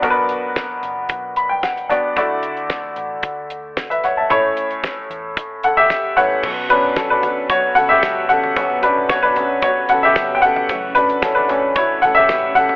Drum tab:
CC |----------------|----------------|----------------|x---------------|
HH |x-x-x-x-x-x-xxx-|x-xxx-x-x-x-xxx-|x-xxx-x-x-x-x-x-|--x-x-x-x-x-x-x-|
SD |----o-------o-o-|----o-------o-o-|----o-------o-o-|----o-------o---|
FT |----------------|----------------|----------------|--o---o--------o|
BD |o---o---o---o---|o---o---o---o---|o---o---o---o---|o---o---o---o---|

CC |----------------|----------------|
HH |x-x-x-x-x-x-x-x-|x-xxx-x-x-x-x-x-|
SD |----o-------o---|----o-------o---|
FT |------o--------o|------o--------o|
BD |o---o---o---o---|o---o---o---o---|